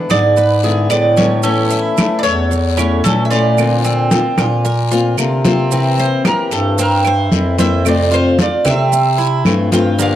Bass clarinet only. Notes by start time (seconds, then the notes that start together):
0.10 G#2
0.90 A2
2.24 E2
3.04 A#2
4.38 A#2
5.18 C3
6.51 G2
7.31 F2
8.65 C3
9.45 G2